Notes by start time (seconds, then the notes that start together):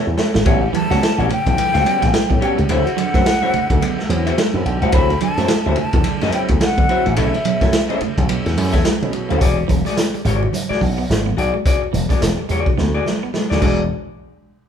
0.06 E2, muted hollow-body jazz guitar stroke
0.17 A4 C#5 E5, muted clean electric guitar stroke, snare
0.34 G#1 A3, muted hollow-body jazz guitar stroke, snare
0.45 A1 G3 B3 C#4 F#4 G4 C#5 E5 F#5, kick, ride bell, muted conga, low conga
0.62 muted hollow-body jazz guitar stroke, muted clean electric guitar stroke
0.73 A2 E3 A5, muted hollow-body jazz guitar stroke, ride bell, high conga
0.90 C#2 G3 A3 B3 C#4 F#4 G4 C#5 F#5, snare, ride bell
1.01 muted clean electric guitar stroke, muted hollow-body jazz guitar stroke, snare, ride bell, muted conga
1.18 A1 G3 B3 C#4 F#4 G4 C#5 F#5, ride bell, muted conga
1.29 A3 G5, muted hollow-body jazz guitar stroke, ride bell, low conga
1.46 B1 A2 E3, muted hollow-body jazz guitar stroke, kick, ride bell, low conga
1.57 A2 E3, muted hollow-body jazz guitar stroke, ride bell, high conga
1.74 C#2 A3 G4 C#5 F#5, snare, ride bell, muted conga
1.85 G3 B3 C#4 F#4, muted hollow-body jazz guitar stroke, muted clean electric guitar stroke, ride bell, high conga
2.02 A1 B3 C#4 F#4, muted hollow-body jazz guitar stroke, kick, snare, ride bell
2.13 C#4 F#4, muted hollow-body jazz guitar stroke, snare, ride bell, muted conga, high conga
2.30 A2 E3 B3, muted hollow-body jazz guitar stroke, kick, muted conga, high conga
2.41 G3 B3 C#4 F#4 G4 C#5 F#5 G5, muted clean electric guitar stroke, ride bell
2.58 C#2 A3, muted hollow-body jazz guitar stroke, ride bell
2.69 D2 F#3 C4 E4 F#4 C5 E5, ride bell, low conga
2.73 F#5
2.86 muted clean electric guitar stroke, muted hollow-body jazz guitar stroke, ride bell, muted conga
2.97 D3 F#3, muted hollow-body jazz guitar stroke, ride bell, high conga
3.14 F#2 F#3 A3 C4 E4 F#4 C5 E5, kick, snare, ride bell
3.24 muted clean electric guitar stroke, muted hollow-body jazz guitar stroke, snare, ride bell, muted conga
3.42 F#3 G3 C4 E4 F#4 C5 E5
3.54 A3, muted hollow-body jazz guitar stroke, muted slap bass stroke, ride bell, low conga
3.70 D2 D3, muted hollow-body jazz guitar stroke, kick, ride bell, low conga
3.81 D3 B3, muted hollow-body jazz guitar stroke, ride bell, muted conga, high conga
3.99 muted hollow-body jazz guitar stroke, muted clean electric guitar stroke, snare, muted conga
4.09 E2 F#3 C4 E4, ride bell, high conga
4.27 B3 C4 E4 F#4 C5 E5, ride bell
4.37 G3, muted hollow-body jazz guitar stroke, snare, ride bell, high conga
4.54 F#2 F#3 C4 E4, muted hollow-body jazz guitar stroke, muted conga, high conga
4.65 B1 D3, muted clean electric guitar stroke, ride bell
4.82 C2 F#3 A3 C4 E4 F#4 C5 F#5, ride bell
4.92 D2 F#3 C4 E4 F#4 C5 E5 B5, kick, ride bell, muted conga, low conga
5.10 muted hollow-body jazz guitar stroke, muted clean electric guitar stroke, ride bell
5.20 D3 F#3 A5, muted hollow-body jazz guitar stroke, ride bell, high conga
5.37 F#2 F#3 A3 C4 E4 F#4 C5 E5, snare, ride bell
5.48 muted clean electric guitar stroke, muted hollow-body jazz guitar stroke, snare, ride bell, muted conga
5.66 D2 F#3 G3 C4 E4 F#4 C5 E5, muted conga
5.76 A3 A5, muted hollow-body jazz guitar stroke, ride bell, low conga
5.93 E2 D3, muted hollow-body jazz guitar stroke, kick, ride bell, low conga
6.04 D3, muted hollow-body jazz guitar stroke, ride bell, high conga
6.21 F#2 A3 F#4 C5 E5, snare, ride bell, muted conga
6.32 F#3 C4 E4 G5, muted clean electric guitar stroke, muted hollow-body jazz guitar stroke, ride bell, high conga
6.48 D2 B3 C4 E4, muted hollow-body jazz guitar stroke, kick, ride bell
6.60 C4 E4 F#5, muted hollow-body jazz guitar stroke, snare, ride bell, muted conga, high conga
6.76 D3 B3, muted hollow-body jazz guitar stroke, kick, ride bell, muted conga, high conga
6.89 F#3 C4 E4 F#4 C5 E5, muted clean electric guitar stroke, ride bell
7.06 A1 A3, muted hollow-body jazz guitar stroke, ride bell
7.16 B1 A3 C#4 E4 A4 C#5 E5, ride bell, muted conga, low conga
7.34 muted hollow-body jazz guitar stroke, muted clean electric guitar stroke, ride bell, muted conga
7.45 B2 F#3, muted hollow-body jazz guitar stroke, ride bell, high conga
7.61 F#2 A3 C#4 E4 A4 C#5 E5, kick, snare, ride bell
7.72 muted clean electric guitar stroke, muted hollow-body jazz guitar stroke, snare, ride bell, muted conga
7.89 G3 A3 C#4 E4 A4 C#5 E5, ride bell, muted conga
8.01 A3, muted hollow-body jazz guitar stroke, muted slap bass stroke, ride bell, low conga
8.17 B1 B2 F#3, muted hollow-body jazz guitar stroke, kick, ride bell, low conga
8.28 B2 F#3 B3, muted hollow-body jazz guitar stroke, ride bell, high conga
8.45 E2, muted hollow-body jazz guitar stroke, muted clean electric guitar stroke, snare, ride bell, muted conga
8.57 F#2 A3 C#4 E4, open hi-hat, ride bell, high conga
8.73 E2 B3 C#4 E4 A4 C#5 E5, kick, snare, ride bell
8.84 G3, muted hollow-body jazz guitar stroke, snare, hi-hat pedal, ride bell, high conga
9.01 B2 A3 C#4 E4, muted hollow-body jazz guitar stroke, ride bell, muted conga, high conga
9.12 B2 F#3, muted clean electric guitar stroke, ride bell
9.29 D2 A3 C#4 E4 A4 C#5 F#5, ride bell
9.41 E1 F#4 G#4 D5, kick, closed hi-hat, muted conga
9.57 muted clean electric guitar stroke, muted hollow-body jazz guitar stroke, muted conga
9.68 E1 E3, muted hollow-body jazz guitar stroke, kick, closed hi-hat, high conga
9.85 G#3 F#4 G#4 D5, snare, closed hi-hat
9.97 muted clean electric guitar stroke, muted hollow-body jazz guitar stroke, snare, closed hi-hat, muted conga
10.14 G3, muted hollow-body jazz guitar stroke, closed hi-hat
10.25 G#1 G#3 F#4 G#4 D5, closed hi-hat, low conga
10.42 muted hollow-body jazz guitar stroke, low conga
10.53 muted hollow-body jazz guitar stroke, closed hi-hat, muted conga, high conga
10.69 G#3 F#4 G#4 D5, muted slap bass stroke, snare, muted conga
10.81 B1, muted hollow-body jazz guitar stroke, muted clean electric guitar stroke, kick, open hi-hat, high conga
10.98 B3, muted hollow-body jazz guitar stroke
11.09 G#1, snare, closed hi-hat, muted conga, high conga
11.25 B3, muted hollow-body jazz guitar stroke, muted conga, high conga
11.37 B1 F#4 G#4 D5, muted clean electric guitar stroke, closed hi-hat
11.54 G#3, muted hollow-body jazz guitar stroke
11.66 F#4 G#4 D5, kick, closed hi-hat, muted conga
11.82 muted clean electric guitar stroke, muted hollow-body jazz guitar stroke, muted conga
11.93 E1 E3, muted hollow-body jazz guitar stroke, closed hi-hat, high conga
12.09 G#3 F#4 G#4 D5, kick, snare, closed hi-hat
12.20 E1, muted clean electric guitar stroke, snare, closed hi-hat, muted conga
12.37 G3, muted hollow-body jazz guitar stroke
12.49 E2 G#3 F#4 G#4 D5, closed hi-hat, low conga
12.66 muted hollow-body jazz guitar stroke, kick, low conga
12.77 D2 B3, muted hollow-body jazz guitar stroke, snare, high conga
12.94 F#4 G#4 D5, muted clean electric guitar stroke, muted conga
13.06 muted hollow-body jazz guitar stroke, snare, high conga
13.23 B3, muted hollow-body jazz guitar stroke
13.34 G3, muted hollow-body jazz guitar stroke, snare, muted conga, high conga
13.50 D2 F#4 G#4 D5, snare, muted conga, high conga
13.61 E1 G#3 D4 F#4 G#4 D5, kick, crash, high conga